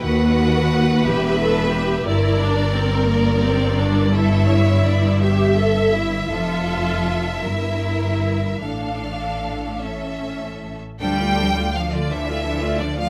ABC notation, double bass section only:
X:1
M:6/8
L:1/8
Q:3/8=56
K:Ephr
V:1 name="Double bass section" clef=bass
^D,,3 E,,,3 | [K:Dm] G,,,6- | G,,,6 | F,,,3 G,,,3 |
A,,,4- A,,, z | D,,3 D,,3 |]